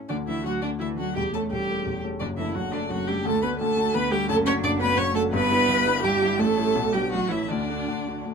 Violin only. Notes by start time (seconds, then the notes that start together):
0.09 D5
0.28 E5
0.45 F#5
0.62 D5
0.81 E5
0.99 F#5
1.16 G5
1.33 A5
1.51 G5
2.20 D5
2.38 E5
2.54 F#5
2.73 D5
2.90 F#5
3.08 G5
3.25 A5
3.42 B5
3.60 A5
3.95 B5
4.12 G5
4.29 A5
4.46 C#6
4.64 D6
4.81 B5
4.97 C#6
5.16 A5
5.34 B5
6.04 G5
6.40 A5
6.93 G5
7.12 F#5
7.31 E5
7.50 D5